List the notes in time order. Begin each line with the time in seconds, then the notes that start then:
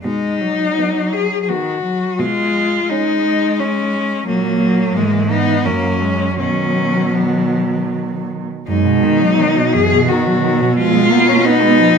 0.04 B2 G#3 D#4
0.42 F#3
0.79 B3
1.13 G#4
1.43 G#4
1.49 D#3 B3 F#4
1.84 F#3
2.19 B2 G#3 F4
2.89 G#3 C#4 D#4
3.59 C#4
4.27 A#2 F#3 A#3
4.61 F#3
4.96 G#2 E3 G#3
5.30 B3 D#4
5.65 F#2 F#3 A#3 C#4
6.03 G#3
6.39 B2 D#3 F#3 C#4
7.15 D#3 B3
8.67 F#2 B2 G#3 D#4
8.85 B2
9.03 D#3
9.21 F#3
9.39 D#3 F#3
9.57 B2
9.73 F#2 E3 G#4
9.92 B2
10.08 D#3 F#4
10.26 F#3
10.43 D#3 F#3
10.62 B2
10.78 F3 G#3 F4
10.95 G#3
11.12 A#3 B3
11.29 C#4
11.45 B3 D#4
11.63 G#3
11.80 F3